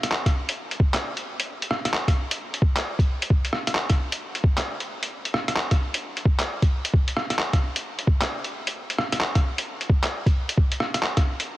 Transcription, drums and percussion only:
0.03 cross-stick, closed hi-hat
0.12 clap
0.26 kick, cross-stick, closed hi-hat
0.49 closed hi-hat
0.71 closed hi-hat
0.80 kick
0.94 cross-stick, clap, closed hi-hat
1.17 closed hi-hat
1.40 closed hi-hat
1.62 closed hi-hat
1.71 cross-stick
1.85 cross-stick, closed hi-hat
1.94 clap
2.08 kick, cross-stick, closed hi-hat
2.31 closed hi-hat
2.54 closed hi-hat
2.62 kick
2.77 clap, closed hi-hat
2.99 kick, closed hi-hat
3.22 closed hi-hat
3.30 kick
3.45 closed hi-hat
3.53 cross-stick
3.67 cross-stick, closed hi-hat
3.75 clap
3.89 kick, cross-stick, closed hi-hat
4.12 closed hi-hat
4.35 closed hi-hat
4.44 kick
4.58 cross-stick, clap, closed hi-hat
4.80 closed hi-hat
5.03 closed hi-hat
5.25 closed hi-hat
5.34 cross-stick
5.48 cross-stick, closed hi-hat
5.56 clap
5.71 kick, cross-stick, closed hi-hat
5.94 closed hi-hat
6.17 closed hi-hat
6.25 kick
6.40 clap, closed hi-hat
6.62 kick, closed hi-hat
6.85 closed hi-hat
6.93 kick
7.08 closed hi-hat
7.17 cross-stick
7.30 cross-stick, closed hi-hat
7.39 clap
7.53 kick, cross-stick, closed hi-hat
7.76 closed hi-hat
7.99 closed hi-hat
8.07 kick
8.21 cross-stick, clap, closed hi-hat
8.44 closed hi-hat
8.67 closed hi-hat
8.90 closed hi-hat
8.98 cross-stick
9.12 cross-stick, closed hi-hat
9.21 clap
9.35 kick, cross-stick, closed hi-hat
9.58 closed hi-hat
9.81 closed hi-hat
9.89 kick
10.04 clap, closed hi-hat
10.26 kick, closed hi-hat
10.49 closed hi-hat
10.57 kick
10.72 closed hi-hat
10.80 cross-stick
10.94 cross-stick, closed hi-hat
11.03 clap
11.17 kick, cross-stick, closed hi-hat
11.40 closed hi-hat

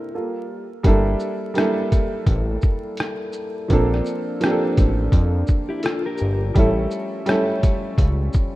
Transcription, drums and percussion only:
0.84 kick, closed hi-hat
1.20 shaker
1.55 cross-stick, closed hi-hat
1.92 kick, closed hi-hat, shaker
2.26 kick, closed hi-hat
2.62 kick, shaker
2.97 cross-stick, closed hi-hat
3.33 shaker
3.70 kick, closed hi-hat
3.94 cross-stick
4.06 shaker
4.41 cross-stick, closed hi-hat
4.77 kick, closed hi-hat, shaker
5.12 kick, closed hi-hat
5.47 kick, shaker
5.83 cross-stick, closed hi-hat
6.18 shaker
6.56 kick, closed hi-hat
6.91 shaker
7.26 cross-stick, closed hi-hat
7.63 kick, closed hi-hat, shaker
7.98 kick, closed hi-hat
8.33 kick, shaker

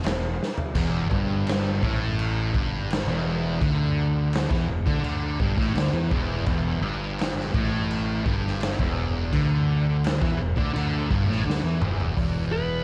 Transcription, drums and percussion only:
0.04 snare, crash
0.43 snare
0.58 floor tom
0.75 kick, splash, crash
1.11 kick
1.47 snare, crash
1.83 kick
2.19 crash
2.54 kick
2.90 snare, crash
3.61 kick, crash
4.33 snare, crash
4.51 kick, snare
4.87 kick
5.04 crash
5.40 kick
5.58 kick, snare
5.75 snare, crash
6.11 kick
6.46 kick, crash
7.19 snare, crash
7.40 snare
7.54 kick
7.91 crash
8.26 kick
8.47 snare
8.61 snare, crash
8.79 kick
9.33 kick, crash
10.04 snare, crash
10.22 kick, snare
10.57 kick
10.76 crash
11.11 kick
11.31 snare
11.50 snare
11.82 mid tom
12.00 floor tom
12.17 kick, open hi-hat

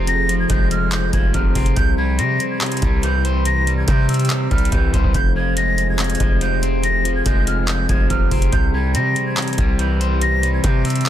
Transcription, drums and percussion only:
0.07 closed hi-hat
0.29 closed hi-hat
0.50 kick, closed hi-hat
0.71 closed hi-hat
0.92 clap, closed hi-hat
1.13 kick, closed hi-hat
1.34 kick, closed hi-hat
1.55 kick, closed hi-hat, open hi-hat
1.66 closed hi-hat
1.76 kick, closed hi-hat
2.19 closed hi-hat
2.40 closed hi-hat
2.61 clap, closed hi-hat
2.66 closed hi-hat
2.72 closed hi-hat
2.77 closed hi-hat
2.82 kick, closed hi-hat
3.03 closed hi-hat
3.25 closed hi-hat
3.45 closed hi-hat
3.67 closed hi-hat
3.88 kick, closed hi-hat
4.09 closed hi-hat, open hi-hat
4.14 closed hi-hat
4.19 closed hi-hat
4.25 closed hi-hat
4.30 clap, closed hi-hat
4.51 kick, closed hi-hat
4.58 closed hi-hat
4.65 closed hi-hat
4.72 kick, closed hi-hat
4.93 kick, closed hi-hat
5.04 kick
5.14 kick, closed hi-hat
5.57 closed hi-hat
5.78 closed hi-hat
5.99 clap, closed hi-hat
6.04 closed hi-hat
6.10 closed hi-hat
6.15 closed hi-hat
6.20 kick, closed hi-hat
6.41 closed hi-hat
6.63 closed hi-hat
6.84 closed hi-hat
7.05 closed hi-hat
7.26 kick, closed hi-hat
7.47 closed hi-hat
7.68 clap, closed hi-hat
7.89 kick, closed hi-hat
8.10 kick, closed hi-hat
8.31 kick, closed hi-hat, open hi-hat
8.42 closed hi-hat
8.53 kick, closed hi-hat
8.95 closed hi-hat
9.16 closed hi-hat
9.37 clap, closed hi-hat
9.42 closed hi-hat
9.48 closed hi-hat
9.53 closed hi-hat
9.58 kick, closed hi-hat
9.79 closed hi-hat
10.01 closed hi-hat
10.22 closed hi-hat
10.43 closed hi-hat
10.64 kick, closed hi-hat
10.85 closed hi-hat, open hi-hat
10.90 closed hi-hat
10.95 closed hi-hat
11.01 closed hi-hat
11.06 clap, closed hi-hat

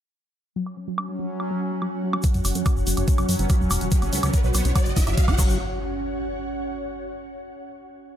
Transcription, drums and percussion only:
0.66 high woodblock
0.98 high woodblock
1.40 high woodblock
1.82 high woodblock
2.13 high woodblock
2.23 kick, closed hi-hat, shaker
2.34 closed hi-hat, shaker
2.45 open hi-hat, high woodblock, shaker
2.55 closed hi-hat, shaker
2.66 kick, closed hi-hat, high woodblock, shaker
2.77 shaker
2.87 open hi-hat, shaker
2.96 closed hi-hat, high woodblock, shaker
3.08 kick, closed hi-hat, shaker
3.18 closed hi-hat, high woodblock, shaker
3.29 open hi-hat, shaker
3.39 closed hi-hat, shaker
3.49 kick, closed hi-hat, high woodblock, shaker
3.61 shaker
3.71 open hi-hat, high woodblock, shaker
3.81 closed hi-hat, shaker
3.91 kick, closed hi-hat, shaker
4.02 closed hi-hat, high woodblock, shaker
4.13 open hi-hat, shaker
4.23 closed hi-hat, high woodblock, shaker
4.34 kick, closed hi-hat, shaker
4.44 shaker
4.54 open hi-hat, high woodblock, shaker
4.65 closed hi-hat, shaker
4.76 kick, closed hi-hat, high woodblock, shaker
4.86 closed hi-hat, shaker
4.96 kick, open hi-hat, shaker
5.07 closed hi-hat, high woodblock, shaker
5.17 kick, closed hi-hat, shaker
5.28 kick, high woodblock, shaker
5.38 kick, crash, shaker
5.49 shaker

